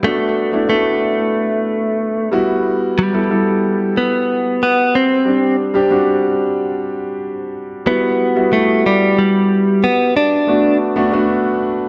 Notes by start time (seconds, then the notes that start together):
0.03 A3 B3 D4 F#4
0.52 A3 B3 D4 E4
0.67 A3 B3 D4 F#4
2.32 G3 B3 E4 F#4
2.99 G3
3.13 G3 B3 E4 A4
3.30 G3 B3 E4 A4
3.97 B3
4.63 B3
4.95 C4
5.25 G3 C4 D4 G4
5.74 G3 C4 D4 G4
5.90 G3 C4 D4 F#4
7.86 G3 B3 E4 F#4
8.35 G3 B3 E4 F#4
8.52 G3 A3 B3 E4 F#4
8.86 G3
9.18 G3
9.84 B3
10.17 D4
10.47 A3 B3 D4 F#4
10.96 A3 B3 D4 F#4
11.12 A3 B3 D4 F#4